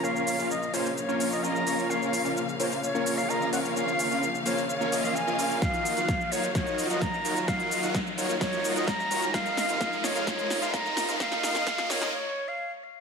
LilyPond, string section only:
\new Staff \with { instrumentName = "String section" } { \clef bass \time 4/4 \key bes \minor \tempo 4 = 129 << { <bes f''>1~ | <bes f''>1~ | <bes f''>1~ | <bes f''>1~ |
<bes f''>1 | <aes f'>1~ | <aes f'>2 r2 | } \\ { <des f>1~ | <des f>1~ | <des f>1 | <ees ges>1~ |
<ees ges>1 | <c f>1~ | <c f>2 r2 | } >> }